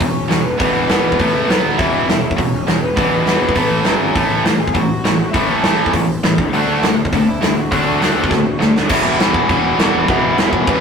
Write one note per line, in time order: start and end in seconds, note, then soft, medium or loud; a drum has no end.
0.00 0.10 E1 medium
0.00 0.14 E2 medium
0.00 0.14 B2 medium
0.00 0.42 C#4 medium
0.00 0.42 C#5 medium
0.00 kick medium
0.15 0.25 E1 medium
0.29 0.40 E1 medium
0.29 0.43 E2 medium
0.29 0.43 B2 medium
0.29 snare loud
0.29 open hi-hat medium
0.44 0.55 E1 medium
0.44 0.57 B3 medium
0.44 0.57 B4 medium
0.58 0.70 E1 medium
0.58 0.87 E2 medium
0.58 0.88 B2 medium
0.58 0.89 E3 medium
0.58 1.59 B3 medium
0.58 1.59 B4 medium
0.58 kick loud
0.58 open hi-hat medium
0.75 0.85 E1 medium
0.88 0.99 E1 medium
0.88 1.18 E2 medium
0.88 1.18 B2 medium
0.88 1.19 E3 medium
0.88 snare loud
0.88 open hi-hat medium
1.04 1.14 E1 medium
1.12 kick medium
1.19 1.30 A1 medium
1.19 1.48 A2 medium
1.19 1.48 E3 medium
1.19 1.49 A3 medium
1.19 kick loud
1.19 open hi-hat medium
1.34 1.44 C#2 medium
1.49 1.59 B1 medium
1.49 1.78 B2 medium
1.49 1.78 F#3 medium
1.49 1.78 B3 loud
1.49 snare loud
1.49 open hi-hat medium
1.64 1.74 D2 medium
1.78 1.89 E1 medium
1.78 2.07 E2 medium
1.78 2.07 B2 medium
1.78 2.08 E3 medium
1.78 2.34 E4 medium
1.78 2.39 E5 loud
1.78 kick loud
1.78 open hi-hat medium
1.94 2.03 E1 medium
2.08 2.18 E1 medium
2.08 2.22 E2 medium
2.08 2.22 B2 medium
2.08 snare loud
2.08 open hi-hat soft
2.23 2.33 E1 medium
2.31 kick medium
2.36 2.48 E1 medium
2.36 2.51 E2 medium
2.36 2.51 B2 medium
2.36 2.79 C#4 medium
2.36 2.81 C#5 medium
2.36 kick medium
2.36 open hi-hat medium
2.53 2.63 E1 medium
2.67 2.77 E1 medium
2.67 2.81 E2 medium
2.67 2.81 B2 medium
2.67 snare loud
2.67 open hi-hat medium
2.82 2.92 E1 medium
2.82 2.95 B3 medium
2.82 2.96 B4 medium
2.97 3.07 E1 medium
2.97 3.25 E2 medium
2.97 3.26 B2 loud
2.97 3.26 E3 medium
2.97 3.97 B3 medium
2.97 3.97 B4 medium
2.97 kick loud
2.97 open hi-hat medium
3.11 3.21 E1 medium
3.26 3.36 E1 medium
3.26 3.55 E2 medium
3.26 3.55 B2 medium
3.26 3.55 E3 medium
3.26 snare medium
3.26 open hi-hat medium
3.40 3.50 E1 medium
3.49 kick medium
3.55 3.66 A1 medium
3.55 3.84 A2 medium
3.55 3.85 E3 medium
3.55 3.85 A3 medium
3.55 kick medium
3.55 open hi-hat medium
3.70 3.80 A1 medium
3.84 3.95 F#1 medium
3.84 4.14 F#2 medium
3.84 4.13 C#3 medium
3.84 4.14 F#3 loud
3.84 snare loud
3.84 open hi-hat medium
4.00 4.10 G#1 medium
4.14 4.25 A1 medium
4.14 4.43 A2 medium
4.14 4.43 E3 medium
4.14 4.44 A3 medium
4.14 kick loud
4.14 open hi-hat medium
4.30 4.40 A1 medium
4.44 4.55 A1 medium
4.44 4.58 A2 medium
4.44 4.58 E3 medium
4.44 snare loud
4.44 open hi-hat soft
4.59 4.69 A1 medium
4.59 4.74 G#4 medium
4.59 4.75 G#5 loud
4.68 kick medium
4.74 4.85 A1 medium
4.74 4.88 A2 medium
4.74 4.88 E3 medium
4.74 5.30 F#4 medium
4.74 5.31 F#5 medium
4.74 kick loud
4.74 open hi-hat medium
4.89 4.99 A1 medium
5.04 5.14 A1 medium
5.04 5.18 A2 medium
5.04 5.18 E3 medium
5.04 snare loud
5.04 open hi-hat medium
5.18 5.28 A1 medium
5.31 5.44 A1 medium
5.31 5.61 A2 medium
5.31 5.62 E3 medium
5.31 5.63 A3 medium
5.31 5.48 E4 medium
5.31 5.48 E5 loud
5.31 kick loud
5.31 open hi-hat medium
5.47 5.58 A1 medium
5.47 6.05 C#4 medium
5.47 6.07 C#5 medium
5.63 5.73 A1 loud
5.63 5.92 A2 medium
5.63 5.92 E3 medium
5.63 5.92 A3 medium
5.63 snare loud
5.63 open hi-hat medium
5.78 5.88 A1 medium
5.86 kick medium
5.93 6.03 A1 medium
5.93 6.07 A2 medium
5.93 6.07 E3 medium
5.93 kick medium
5.93 open hi-hat medium
6.08 6.18 A1 medium
6.23 6.33 A1 medium
6.23 6.37 A2 medium
6.23 6.37 E3 medium
6.23 snare loud
6.23 open hi-hat medium
6.38 6.48 D2 medium
6.38 kick loud
6.52 6.62 D2 loud
6.52 6.82 D3 medium
6.52 6.82 A3 loud
6.52 6.82 D4 loud
6.52 6.95 F#4 medium
6.52 6.94 F#5 loud
6.52 open hi-hat medium
6.67 6.77 D2 medium
6.82 6.92 D2 medium
6.82 6.96 D3 medium
6.82 6.96 A3 medium
6.82 snare loud
6.82 open hi-hat medium
6.97 7.07 D2 medium
7.05 kick medium
7.12 7.22 D2 medium
7.12 7.26 D3 medium
7.12 7.26 A3 medium
7.12 7.26 D4 medium
7.12 7.27 D5 medium
7.12 kick medium
7.12 open hi-hat medium
7.27 7.37 D2 medium
7.27 7.54 E4 medium
7.27 7.56 E5 medium
7.42 7.52 D2 medium
7.42 7.55 D3 medium
7.42 7.55 A3 medium
7.42 snare loud
7.42 open hi-hat medium
7.56 7.67 D2 medium
7.56 8.56 F#4 medium
7.56 8.56 F#5 loud
7.71 7.81 D2 medium
7.71 8.00 D3 medium
7.71 8.00 A3 medium
7.71 8.01 D4 loud
7.71 kick loud
7.71 open hi-hat medium
7.86 7.96 D2 medium
8.01 8.11 D2 medium
8.01 8.29 D3 medium
8.01 8.30 A3 medium
8.01 8.30 D4 medium
8.01 snare medium
8.01 open hi-hat medium
8.16 8.26 D2 medium
8.24 kick medium
8.30 8.41 D2 medium
8.30 8.44 D3 medium
8.30 8.44 A3 medium
8.30 kick loud
8.30 snare medium
8.45 8.55 D2 medium
8.58 8.70 D2 medium
8.58 8.73 D3 medium
8.58 8.73 A3 medium
8.58 8.87 D4 medium
8.58 8.86 D5 medium
8.58 snare medium
8.75 8.85 D2 medium
8.75 snare medium
8.89 9.01 E1 loud
8.89 9.19 E2 medium
8.89 9.18 B2 loud
8.89 9.18 E3 loud
8.89 9.18 E4 medium
8.89 9.17 E5 loud
8.89 kick loud
8.89 crash loud
8.89 crash medium
9.05 9.16 E1 medium
9.19 9.42 E1 loud
9.19 9.48 E2 medium
9.19 9.48 B2 medium
9.19 9.49 E3 medium
9.19 snare loud
9.19 crash medium
9.34 9.75 G#4 medium
9.34 9.75 G#5 loud
9.34 kick medium
9.49 9.60 E1 medium
9.49 9.79 E2 loud
9.49 9.79 B2 loud
9.49 9.77 E3 loud
9.49 kick loud
9.49 crash medium
9.63 9.75 E1 loud
9.78 9.90 E1 medium
9.78 10.07 E2 medium
9.78 10.08 B2 medium
9.78 10.08 E3 medium
9.78 10.06 F#4 medium
9.78 10.08 F#5 medium
9.78 snare loud
9.78 crash medium
9.93 10.04 E1 medium
10.08 10.20 E1 loud
10.08 10.38 E2 loud
10.08 10.37 B2 loud
10.08 10.36 E3 loud
10.08 10.36 E4 medium
10.08 10.38 E5 loud
10.08 kick loud
10.08 crash medium
10.24 10.35 E1 medium
10.37 10.61 E1 loud
10.37 10.66 E2 medium
10.37 10.67 B2 medium
10.37 10.67 E3 medium
10.37 10.65 C#4 medium
10.37 10.67 C#5 medium
10.37 snare loud
10.37 crash medium
10.53 kick medium
10.67 10.79 E1 loud
10.67 10.80 E2 loud
10.67 10.80 B2 loud
10.67 10.80 E3 loud
10.67 10.80 B3 medium
10.67 10.80 B4 medium
10.67 kick loud
10.67 crash medium